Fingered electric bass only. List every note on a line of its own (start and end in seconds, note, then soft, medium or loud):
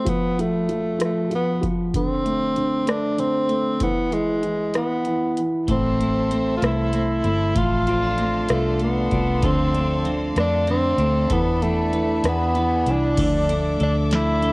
5.68 6.58 A1 medium
6.63 7.21 C2 medium
7.24 7.54 G1 medium
7.56 8.45 A1 medium
8.50 9.08 C2 medium
9.12 9.41 C2 medium
9.43 10.33 D2 medium
10.36 10.95 F2 medium
10.98 11.28 D2 medium
11.30 12.20 E2 medium
12.24 12.83 E2 medium
12.86 13.16 C2 medium
13.18 13.77 D2 medium
13.81 14.53 D2 medium